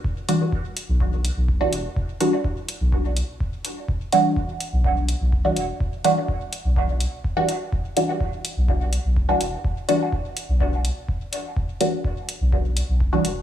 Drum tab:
HH |-x-x-x-x|-x-x-x-x|-x-x-x-x|-x-x-x-x|
BD |o-o-o-o-|o-o-o-o-|o-o-o-o-|o-o-o-o-|

HH |-x-x-x-x|-x-x-x-x|-x-x-x-x|
BD |o-o-o-o-|o-o-o-o-|o-o-o-o-|